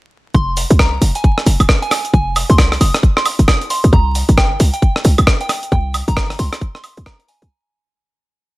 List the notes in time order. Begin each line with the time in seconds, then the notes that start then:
0.34 F1 C6, kick, shaker
0.57 open hi-hat, shaker
0.70 C2, closed hi-hat, shaker
0.79 A#5, kick, cross-stick, shaker
1.02 F1, open hi-hat, shaker
1.15 G#5, closed hi-hat, shaker
1.24 kick, shaker
1.38 cross-stick
1.46 F1, open hi-hat, shaker
1.60 D#1, closed hi-hat, high woodblock, shaker
1.69 kick, cross-stick, shaker
1.82 G#5, closed hi-hat
1.91 cross-stick, open hi-hat, high woodblock, shaker
2.05 closed hi-hat, shaker
2.14 F1 G#5, kick, shaker
2.36 open hi-hat, high woodblock, shaker
2.50 C2 C6, closed hi-hat, shaker
2.58 kick, cross-stick, shaker
2.72 cross-stick, open hi-hat
2.81 F1 D#6, open hi-hat, shaker
2.94 cross-stick, closed hi-hat, shaker
3.03 kick, shaker
3.17 C6, cross-stick
3.26 open hi-hat, high woodblock, shaker
3.39 F1, closed hi-hat, shaker
3.48 D#6, kick, cross-stick, shaker
3.62 closed hi-hat
3.70 C6, open hi-hat, shaker
3.84 C2, closed hi-hat, shaker
3.93 C2 A#5, kick, shaker
4.15 open hi-hat, shaker
4.29 G1, closed hi-hat, shaker
4.38 G5, kick, cross-stick, shaker
4.60 C2, open hi-hat, shaker
4.74 G5, closed hi-hat, shaker
4.82 kick, shaker
4.96 cross-stick
5.05 C2, open hi-hat, shaker
5.18 A#1, closed hi-hat, high woodblock, shaker
5.27 kick, cross-stick, shaker
5.41 G5, closed hi-hat
5.49 cross-stick, open hi-hat, high woodblock, shaker
5.63 closed hi-hat, shaker
5.72 C2 G5, kick, shaker
5.94 open hi-hat, high woodblock, shaker
6.08 G1 A#5, closed hi-hat, shaker
6.17 kick, cross-stick, shaker
6.30 cross-stick, open hi-hat
6.39 C2 C6, open hi-hat, shaker
6.53 cross-stick, closed hi-hat, shaker
6.61 kick, shaker
6.75 C6, cross-stick
6.84 open hi-hat, high woodblock, shaker
6.97 C2, closed hi-hat, shaker
7.06 A#5, kick, cross-stick, shaker
7.20 closed hi-hat
7.29 G#5, open hi-hat, shaker
7.42 C2, closed hi-hat, shaker